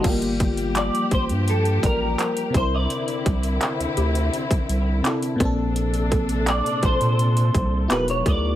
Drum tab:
CC |x---------------|----------------|----------------|
HH |xxxxxxxxxxx-xxx-|xxxxxxxxxxx-xxx-|xxxxxxxxxxx-xxx-|
CP |----x-------x---|----x-------x---|----x-------x---|
SD |----------------|--------------r-|--------------r-|
BD |o-o---o---o---o-|--o------o----o-|--o---o---o---o-|